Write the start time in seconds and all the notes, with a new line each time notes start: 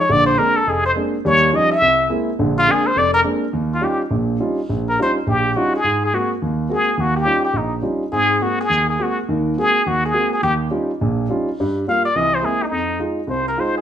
0.00 C#5
0.10 A#1 D3 D5
0.27 C5
0.38 G#3 A#3 C4 D4 A#4
0.56 A4
0.67 F1 F2 G#4
0.86 C5
0.96 G#3 A#3 C4 D4
1.25 D#2 G3 C#5
1.53 F3 G3 C#4 D#4 D#5
1.72 E5
1.82 C2
2.10 G#3 A#3 C4 E4
2.39 A#1 D3
2.59 F4
2.68 G#3 A#3 C4 D4 G#4
2.87 C5
2.96 F1 D5
3.14 A#4
3.24 G#3 A#3 C4 D4
3.53 D#2
3.75 F4
3.81 G3 C#4 D#4 F4 G4
4.11 A#1 A#2
4.40 G3 C#4 D#4 F4
4.70 A#1
4.89 A#4
4.99 G3 C#4 D#4 F4 C5
5.27 A#1 A#2 G4
5.56 G3 C#4 D#4 F4 F#4
5.75 G#4
5.84 G#2
6.05 G#4
6.13 G#3 A#3 C4 F#4
6.42 D#2
6.69 G#3 A#3 C4 F#4 G#4
6.98 D#2 F#4
7.17 G4
7.25 G3 C#4 D#4 F4
7.45 G4
7.54 A#1 D#4
7.82 G3 C#4 D#4 F4
8.12 G#2 C4 G#4
8.41 G#3 A#3 C4 F#4
8.61 G#4
8.70 D#2
8.90 G#4
8.99 G#3 A#3 C4 F#4
9.29 D#2 D#3
9.57 G#3 A#3 C4 F#4 G#4
9.86 D#2 F#4
10.06 G#4
10.13 G#3 A#3 C4 F#4
10.33 G#4
10.43 D#2 G4
10.71 G3 C#4 D#4 F4
11.01 A#1 A#2
11.29 G3 C#4 D#4 F4
11.60 G2 G3
11.88 G3 A#3 F4 F5
12.05 D5
12.16 C2 E3 D#5
12.35 C5
12.43 G#3 A#3 C4 E4 G#4
12.63 D#4
12.72 F2
12.99 G#3 D#4 F4
13.27 C2 C5
13.48 A#4
13.57 G#3 D#4 F4 C5